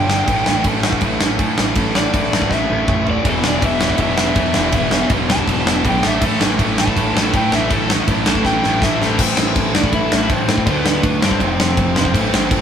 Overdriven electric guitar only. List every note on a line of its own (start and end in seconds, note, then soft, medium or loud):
0.00 0.63 G5 loud
1.97 2.53 D5 medium
2.53 3.06 E5 loud
3.10 3.27 D5 medium
3.29 3.45 A4 loud
3.47 3.64 D5 medium
3.64 3.99 E5 medium
4.01 5.09 E5 loud
5.30 5.84 A5 loud
5.88 6.05 G5 medium
6.07 6.24 E5 loud
6.24 6.42 A4 loud
6.80 7.33 A5 loud
7.36 7.55 G5 loud
7.55 7.72 E5 loud
7.72 7.90 A4 loud
8.29 8.45 A5 loud
8.45 8.81 G5 loud
8.83 9.19 E5 loud
9.00 9.71 C4 medium
9.00 9.77 C5 medium
9.74 9.92 D4 medium
9.74 9.93 D5 loud
9.94 10.28 E4 loud
9.94 10.32 E5 loud
10.29 10.64 C4 medium
10.29 10.65 C5 medium
10.66 11.18 B3 medium
10.66 10.78 C5 loud
10.78 11.21 B4 loud
11.21 11.92 C4 medium
11.21 11.95 C5 loud
11.95 12.61 C4 medium
11.95 12.61 C5 loud